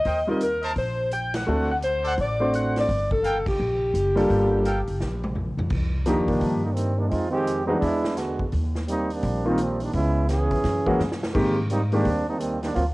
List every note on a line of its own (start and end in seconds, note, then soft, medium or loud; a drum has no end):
0.00 0.26 D#5 medium
0.05 0.73 D#2 medium
0.05 0.21 A#4 medium
0.05 0.21 C5 medium
0.05 0.21 D#5 medium
0.05 0.21 G5 medium
0.05 kick soft
0.05 open hi-hat soft
0.27 0.39 G3 medium
0.27 0.40 C4 medium
0.27 0.40 D#4 medium
0.27 0.40 F4 medium
0.27 0.41 A#4 medium
0.27 0.41 D#5 medium
0.41 0.75 A#4 medium
0.41 closed hi-hat medium
0.62 0.72 A#4 medium
0.62 0.72 C5 medium
0.62 0.72 D#5 medium
0.62 0.72 A5 loud
0.62 open hi-hat soft
0.76 1.44 A#1 medium
0.76 1.10 C5 medium
0.76 kick soft
0.76 open hi-hat soft
1.11 1.33 G5 medium
1.11 closed hi-hat medium
1.34 1.70 F#5 loud
1.34 snare medium
1.34 ride medium
1.47 2.15 D2 medium
1.47 1.67 A3 medium
1.47 1.67 C4 medium
1.47 1.68 D4 soft
1.47 1.68 F#4 medium
1.47 1.68 A4 medium
1.72 1.77 F#5 medium
1.82 2.16 C5 loud
1.82 closed hi-hat soft
2.04 2.13 A4 medium
2.04 2.13 C5 medium
2.04 2.13 D5 medium
2.04 2.13 F#5 loud
2.04 open hi-hat soft
2.18 2.85 A1 medium
2.18 2.52 D5 medium
2.18 kick soft
2.18 open hi-hat soft
2.40 2.86 A3 medium
2.40 2.86 C4 medium
2.40 2.86 D4 medium
2.40 2.86 F#4 medium
2.40 2.86 C5 medium
2.54 2.75 F#5 medium
2.54 closed hi-hat medium
2.76 3.10 D5 medium
2.76 snare soft
2.76 open hi-hat soft
2.89 3.56 G1 medium
2.89 kick soft
2.89 open hi-hat soft
3.11 3.45 A4 medium
3.11 kick medium
3.24 3.39 A4 medium
3.24 3.39 A#4 medium
3.24 3.39 F5 medium
3.24 3.39 G5 medium
3.24 closed hi-hat soft
3.46 5.37 G4 medium
3.46 kick medium
3.46 crash medium
3.60 3.92 A#1 medium
3.94 4.27 F#1 medium
3.94 closed hi-hat medium
4.16 4.62 G3 medium
4.16 4.62 A#3 medium
4.16 4.62 D4 medium
4.16 4.62 F4 medium
4.16 4.63 A4 medium
4.16 open hi-hat soft
4.30 4.83 G1 medium
4.30 kick soft
4.30 open hi-hat soft
4.65 4.80 A4 medium
4.65 4.80 A#4 medium
4.65 4.80 F5 medium
4.65 4.80 G5 medium
4.65 closed hi-hat medium
4.87 5.00 F#1 medium
4.87 open hi-hat soft
5.00 5.54 A#1 medium
5.00 snare soft
5.23 mid tom medium
5.35 floor tom medium
5.57 5.70 B1 medium
5.57 floor tom medium
5.70 6.14 C2 medium
5.70 kick medium
5.70 crash medium
6.05 6.16 D3 medium
6.05 6.59 D#3 medium
6.05 6.59 F3 medium
6.05 6.16 G3 medium
6.05 6.59 A#3 medium
6.05 6.16 A#3 medium
6.05 6.59 D4 medium
6.05 6.16 D#4 medium
6.05 6.60 G4 medium
6.05 snare soft
6.05 closed hi-hat medium
6.18 6.28 D2 medium
6.26 6.40 C#2 medium
6.26 6.60 D#3 medium
6.26 6.60 G3 medium
6.26 6.60 A#3 medium
6.26 6.60 D4 medium
6.26 kick soft
6.26 open hi-hat soft
6.41 7.08 G2 medium
6.41 kick soft
6.41 open hi-hat soft
6.62 6.76 D3 medium
6.62 6.73 G3 medium
6.62 6.72 A#3 medium
6.62 6.76 D#4 medium
6.73 6.95 D#3 medium
6.73 6.94 G3 medium
6.73 6.94 A#3 medium
6.73 6.97 C4 medium
6.73 closed hi-hat medium
6.95 7.10 D#3 medium
6.95 7.10 G3 medium
6.95 7.10 A#3 medium
6.95 7.10 D4 medium
7.08 7.79 F2 medium
7.08 7.29 G#3 medium
7.08 7.28 C4 medium
7.08 7.32 D#4 medium
7.08 7.33 F4 medium
7.08 kick soft
7.08 open hi-hat soft
7.29 7.65 D#3 medium
7.29 7.65 G#3 medium
7.29 7.64 C4 medium
7.29 7.65 G4 loud
7.47 closed hi-hat medium
7.65 7.80 E3 medium
7.65 7.79 G3 medium
7.65 7.79 G#3 medium
7.65 7.80 G#3 medium
7.65 7.80 B3 medium
7.65 7.79 C4 medium
7.65 7.81 D4 medium
7.65 7.79 D#4 medium
7.65 7.81 F#4 medium
7.79 8.49 E2 medium
7.79 8.14 G#3 medium
7.79 8.14 B3 medium
7.79 8.13 D4 medium
7.79 8.14 E4 loud
7.79 kick soft
7.79 open hi-hat soft
8.04 snare medium
8.16 8.46 D3 medium
8.16 8.46 G#3 medium
8.16 8.46 B3 medium
8.16 8.46 F#4 medium
8.16 snare soft
8.16 closed hi-hat medium
8.39 kick soft
8.52 9.20 D#2 medium
8.52 kick soft
8.52 open hi-hat soft
8.75 snare soft
8.88 9.09 G3 medium
8.88 9.09 A#3 medium
8.88 9.09 C4 medium
8.88 9.09 D#4 medium
8.88 closed hi-hat medium
9.10 9.44 G3 medium
9.10 9.45 A#3 medium
9.10 9.44 C4 medium
9.10 9.47 D4 medium
9.10 open hi-hat soft
9.22 9.90 A#1 medium
9.22 kick soft
9.22 open hi-hat soft
9.45 9.57 D#3 medium
9.45 9.57 G3 medium
9.45 9.58 G3 medium
9.45 9.58 A#3 medium
9.45 9.59 C4 medium
9.45 9.57 C4 soft
9.45 9.59 D#4 medium
9.45 9.58 F4 medium
9.58 9.81 F3 medium
9.58 9.80 G3 medium
9.58 9.80 A#3 medium
9.58 9.82 C4 medium
9.58 closed hi-hat medium
9.80 9.94 D#3 medium
9.80 9.94 G3 medium
9.80 9.94 A#3 medium
9.80 9.94 D4 medium
9.80 open hi-hat soft
9.92 10.47 C#2 medium
9.92 10.26 G#3 medium
9.92 10.26 B3 medium
9.92 10.26 C#4 medium
9.92 10.26 E4 medium
9.92 kick soft
9.92 open hi-hat soft
10.28 11.18 E3 medium
10.28 10.62 B3 medium
10.28 11.17 C#4 medium
10.28 11.17 G#4 loud
10.28 snare soft
10.28 closed hi-hat medium
10.51 10.63 F2 medium
10.51 kick medium
10.51 open hi-hat soft
10.64 10.97 F#2 medium
10.64 kick soft
10.64 snare soft
10.64 open hi-hat soft
10.86 10.98 E3 medium
10.86 10.98 G#3 medium
10.86 10.98 A#3 medium
10.86 10.99 C#4 medium
10.86 10.99 F#4 medium
10.86 kick medium
10.99 11.32 F#2 medium
10.99 snare soft
11.12 snare medium
11.23 snare medium
11.34 12.02 G#2 medium
11.34 11.54 D#3 medium
11.34 11.55 G#3 medium
11.34 11.55 A#3 medium
11.34 11.55 C4 medium
11.34 11.55 G4 medium
11.34 kick medium
11.34 crash medium
11.70 11.81 G3 medium
11.70 11.81 A#3 medium
11.70 11.80 C4 medium
11.70 11.80 D#4 medium
11.70 closed hi-hat medium
11.92 12.04 D#3 medium
11.92 12.26 G3 medium
11.92 12.04 G#3 soft
11.92 12.05 A#3 medium
11.92 12.26 A#3 medium
11.92 12.26 C4 medium
11.92 12.05 C4 medium
11.92 12.25 D4 medium
11.92 12.05 G4 medium
11.92 open hi-hat soft
12.05 12.72 D#2 medium
12.05 kick soft
12.05 open hi-hat soft
12.28 12.38 G3 medium
12.28 12.38 A#3 medium
12.28 12.38 C4 medium
12.28 12.40 D#4 medium
12.39 12.61 D#3 medium
12.39 12.60 G3 medium
12.39 12.61 A#3 medium
12.39 12.62 C4 medium
12.39 closed hi-hat medium
12.61 12.74 D#3 medium
12.61 12.74 G3 medium
12.61 12.73 A#3 medium
12.61 12.74 D4 medium
12.61 snare soft
12.61 open hi-hat soft
12.74 12.94 D2 medium
12.74 12.84 F#3 medium
12.74 12.84 A#3 medium
12.74 12.84 C4 medium
12.74 12.84 F4 medium
12.74 kick soft
12.74 open hi-hat soft